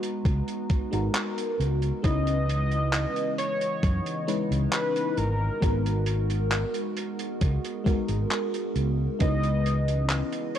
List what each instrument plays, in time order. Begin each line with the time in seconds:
Already playing: fm electric piano G#3 B3 D#4 F#4 B4, ambient pad G#3 B3 F#4 A#5
0.03 closed hi-hat
0.25 fretless electric bass C#2, kick, closed hi-hat
0.48 closed hi-hat
0.70 kick, closed hi-hat
0.91 fretless electric bass G#1, fm electric piano G#3 B3 D#4 F#4 A#4, closed hi-hat
1.14 clap, closed hi-hat
1.38 closed hi-hat
1.59 fretless electric bass C#2, closed hi-hat
1.82 closed hi-hat
2.02 fretless electric bass C#2, ambient pad C#3 E3 B3 D#5, fm electric piano G#3 C#4 D#4 E4 B4, soft synth lead D#5, kick, closed hi-hat
2.27 closed hi-hat
2.49 closed hi-hat
2.71 closed hi-hat
2.93 clap, closed hi-hat
3.16 closed hi-hat
3.38 soft synth lead C#5, closed hi-hat
3.61 closed hi-hat
3.83 fretless electric bass F#2, kick, closed hi-hat
4.06 closed hi-hat
4.27 fm electric piano G#3 C#4 D#4 E4 B4, closed hi-hat
4.51 fretless electric bass C#2, closed hi-hat
4.72 soft synth lead B4, clap, closed hi-hat
4.96 closed hi-hat
5.17 fretless electric bass G#1, ambient pad G#3 B3 F#4 A#4, soft synth lead A#4, closed hi-hat
5.60 fretless electric bass G#1, fm electric piano G#3 B3 D#4 F#4 A#4, kick, closed hi-hat
5.86 closed hi-hat
6.06 closed hi-hat
6.30 closed hi-hat
6.51 clap, closed hi-hat
6.74 closed hi-hat
6.97 ambient pad G#4, closed hi-hat
7.19 closed hi-hat
7.41 fretless electric bass C#2, kick, closed hi-hat
7.65 closed hi-hat
7.84 fm electric piano G#3 B3 D#4 F#4 A#4, kick, closed hi-hat
8.08 fretless electric bass G#1, closed hi-hat
8.31 clap, closed hi-hat
8.54 closed hi-hat
8.76 fretless electric bass C#2, closed hi-hat
9.19 fretless electric bass C#2, ambient pad C#3 E3 B3 D#5, fm electric piano G#3 C#4 D#4 E4 B4, soft synth lead D#5, kick, closed hi-hat
9.43 closed hi-hat
9.66 closed hi-hat
9.88 closed hi-hat
10.10 clap, closed hi-hat
10.33 closed hi-hat
10.55 soft synth lead C#5, closed hi-hat